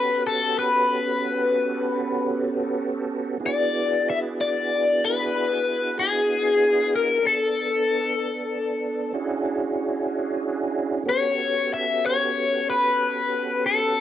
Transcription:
0.00 3.38 B3 medium
0.00 3.37 C#4 medium
0.00 3.38 F#4 medium
0.00 3.38 G4 medium
0.00 3.38 A4 medium
0.00 0.21 B4 medium
0.27 0.58 A4 medium
0.59 2.44 B4 medium
3.40 7.19 B3 medium
3.40 7.19 D4 medium
3.40 7.19 E4 medium
3.40 7.19 F#4 medium
3.40 7.19 G#4 medium
3.46 4.09 D5 medium
4.10 4.18 E5 medium
4.41 5.04 D5 medium
5.05 5.99 B4 medium
5.99 6.95 G#4 medium
6.96 7.26 A#4 medium
7.22 9.13 B3 medium
7.22 9.12 D4 medium
7.22 9.12 A4 medium
7.26 9.12 A4 medium
9.14 11.04 C#4 medium
9.14 11.03 D4 medium
9.14 11.04 E4 medium
9.14 11.03 F#4 medium
9.14 11.04 G#4 medium
11.05 14.01 B3 medium
11.05 14.01 C#4 medium
11.05 14.01 F#4 medium
11.05 14.01 G4 medium
11.05 14.01 A4 medium
11.05 11.73 C#5 medium
11.74 12.04 E5 medium
12.06 12.69 C#5 medium
12.70 13.65 B4 medium
13.66 14.01 A4 medium

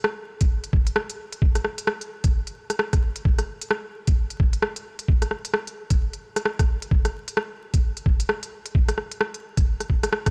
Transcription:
0.04 cross-stick loud
0.41 kick loud
0.41 closed hi-hat medium
0.64 closed hi-hat soft
0.73 kick loud
0.87 closed hi-hat medium
0.96 cross-stick loud
1.09 closed hi-hat soft
1.32 closed hi-hat medium
1.42 kick loud
1.55 cross-stick medium
1.55 closed hi-hat soft
1.64 cross-stick medium
1.78 closed hi-hat medium
1.87 cross-stick loud
2.01 closed hi-hat soft
2.24 kick loud
2.24 closed hi-hat medium
2.47 closed hi-hat soft
2.70 cross-stick medium
2.70 closed hi-hat medium
2.79 cross-stick loud
2.93 kick loud
2.93 cross-stick medium
2.93 closed hi-hat soft
3.16 closed hi-hat medium
3.25 kick loud
3.38 cross-stick medium
3.38 closed hi-hat soft
3.62 closed hi-hat medium
3.71 cross-stick loud
4.07 kick loud
4.07 closed hi-hat medium
4.30 closed hi-hat soft
4.40 kick loud
4.53 closed hi-hat medium
4.62 cross-stick loud
4.76 closed hi-hat soft
4.99 closed hi-hat medium
5.08 kick loud
5.22 cross-stick medium
5.22 closed hi-hat soft
5.31 cross-stick medium
5.45 closed hi-hat medium
5.54 cross-stick loud
5.67 closed hi-hat soft
5.90 kick loud
5.90 closed hi-hat medium
6.13 closed hi-hat soft
6.36 cross-stick medium
6.36 closed hi-hat medium
6.45 cross-stick loud
6.59 kick loud
6.59 cross-stick medium
6.59 closed hi-hat soft
6.82 closed hi-hat medium
6.91 kick loud
7.05 cross-stick medium
7.05 closed hi-hat soft
7.28 closed hi-hat medium
7.37 cross-stick loud
7.74 kick loud
7.74 closed hi-hat medium
7.97 closed hi-hat soft
8.06 kick loud
8.20 closed hi-hat medium
8.29 cross-stick loud
8.43 closed hi-hat soft
8.66 closed hi-hat medium
8.75 kick loud
8.88 cross-stick medium
8.88 closed hi-hat soft
8.98 cross-stick medium
9.12 closed hi-hat medium
9.21 cross-stick loud
9.34 closed hi-hat soft
9.57 kick loud
9.57 closed hi-hat medium
9.80 cross-stick soft
9.80 closed hi-hat soft
9.90 kick medium
10.03 cross-stick medium
10.03 closed hi-hat medium
10.12 cross-stick loud
10.26 kick loud
10.26 cross-stick medium
10.26 closed hi-hat soft

